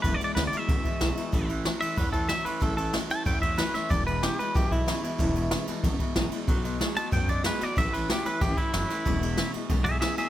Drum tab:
RD |xxxxxxxx|xxxxxxxx|xxxxxxxx|xxxxxxxx|
SD |--o---o-|--o---o-|--o---oo|--o---o-|
BD |o---oo--|o---oo--|o---oo--|o---oo--|

RD |xxxxxxxx|xxxxxxxx|xxxxxxxx|xxxxxxxx|
SD |--o---o-|--o---oo|--o---oo|--o---oo|
BD |o---oo--|o---oo--|o---oo--|o---oo--|